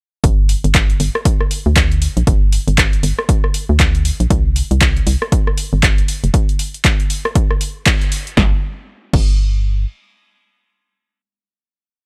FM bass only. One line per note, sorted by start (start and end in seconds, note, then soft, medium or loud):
0.24 0.55 G1 loud
0.64 0.94 G1 medium
1.00 1.10 G1 loud
1.66 2.08 D2 medium
2.17 2.23 A#1 medium
2.27 2.59 G1 loud
2.68 2.97 G1 loud
3.03 3.13 G1 loud
3.69 4.11 D2 medium
4.20 4.27 A#1 medium
4.30 4.62 C2 loud
4.71 5.01 C2 loud
5.07 5.16 C2 loud
5.73 6.02 G1 medium
6.24 6.30 F1 medium
8.37 8.53 G1 medium
9.13 9.86 G1 loud